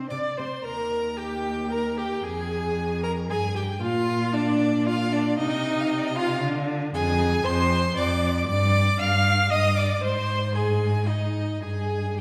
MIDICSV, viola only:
0, 0, Header, 1, 2, 480
1, 0, Start_track
1, 0, Tempo, 528634
1, 582, Time_signature, 3, 2, 24, 8
1, 4411, Tempo, 517688
1, 9691, Tempo, 543971
1, 11153, End_track
2, 0, Start_track
2, 0, Title_t, "Viola"
2, 0, Program_c, 0, 41
2, 89, Note_on_c, 0, 74, 68
2, 338, Note_on_c, 0, 72, 55
2, 352, Note_off_c, 0, 74, 0
2, 581, Note_on_c, 0, 70, 69
2, 595, Note_off_c, 0, 72, 0
2, 1060, Note_on_c, 0, 67, 69
2, 1074, Note_off_c, 0, 70, 0
2, 1539, Note_off_c, 0, 67, 0
2, 1545, Note_on_c, 0, 70, 75
2, 1792, Note_on_c, 0, 67, 72
2, 1806, Note_off_c, 0, 70, 0
2, 2025, Note_on_c, 0, 68, 81
2, 2038, Note_off_c, 0, 67, 0
2, 2744, Note_off_c, 0, 68, 0
2, 2749, Note_on_c, 0, 70, 72
2, 2822, Note_off_c, 0, 70, 0
2, 2994, Note_on_c, 0, 68, 86
2, 3067, Note_off_c, 0, 68, 0
2, 3218, Note_on_c, 0, 67, 66
2, 3290, Note_off_c, 0, 67, 0
2, 3455, Note_on_c, 0, 65, 81
2, 3930, Note_on_c, 0, 62, 80
2, 3943, Note_off_c, 0, 65, 0
2, 4415, Note_on_c, 0, 65, 86
2, 4429, Note_off_c, 0, 62, 0
2, 4649, Note_off_c, 0, 65, 0
2, 4654, Note_on_c, 0, 62, 86
2, 4889, Note_off_c, 0, 62, 0
2, 4896, Note_on_c, 0, 63, 95
2, 5614, Note_on_c, 0, 65, 87
2, 5628, Note_off_c, 0, 63, 0
2, 5858, Note_off_c, 0, 65, 0
2, 6341, Note_on_c, 0, 68, 94
2, 6810, Note_on_c, 0, 72, 109
2, 6824, Note_off_c, 0, 68, 0
2, 7280, Note_off_c, 0, 72, 0
2, 7285, Note_on_c, 0, 74, 88
2, 7760, Note_off_c, 0, 74, 0
2, 7774, Note_on_c, 0, 74, 96
2, 8245, Note_off_c, 0, 74, 0
2, 8252, Note_on_c, 0, 77, 104
2, 8719, Note_on_c, 0, 75, 102
2, 8733, Note_off_c, 0, 77, 0
2, 8959, Note_off_c, 0, 75, 0
2, 8965, Note_on_c, 0, 74, 75
2, 9201, Note_off_c, 0, 74, 0
2, 9206, Note_on_c, 0, 72, 88
2, 9682, Note_off_c, 0, 72, 0
2, 9691, Note_on_c, 0, 68, 78
2, 10151, Note_on_c, 0, 63, 69
2, 10164, Note_off_c, 0, 68, 0
2, 10638, Note_on_c, 0, 68, 68
2, 10652, Note_off_c, 0, 63, 0
2, 11120, Note_off_c, 0, 68, 0
2, 11125, Note_on_c, 0, 67, 49
2, 11153, Note_off_c, 0, 67, 0
2, 11153, End_track
0, 0, End_of_file